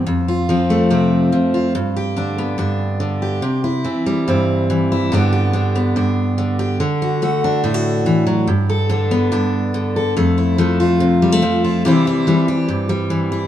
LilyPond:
\new Staff \with { instrumentName = "Steel-string acoustic guitar" } { \time 4/4 \key c \major \tempo 4 = 143 << { r8 f'8 c'8 a8 c'4. f'8 | r8 g'8 d'8 b8 d'4. g'8 | r8 e'8 c'8 g8 c'4. e'8 | <d b d' g'>8 g'8 d'8 b8 d'4. g'8 |
r8 fis'8 fis'8 d'8 e'16 fis'4.~ fis'16 | r8 a'8 d'8 b8 d'4. a'8 | a8 e'8 a8 f'4 g16 a8. f'8 | <e g c' e'>8 e'8 g8 g'4 g4 e'8 | } \\ { f,4 f4 c4 f4 | g,4 d4 g,4 d4 | c4 e4 g,4 e4 | g,4 d4 g,4 d4 |
d4 a4 a,4 e8 fis8 | g,4 d4 g,4 d4 | f,4 f4 c4 f4 | c4 e4 g,4 e4 | } >> }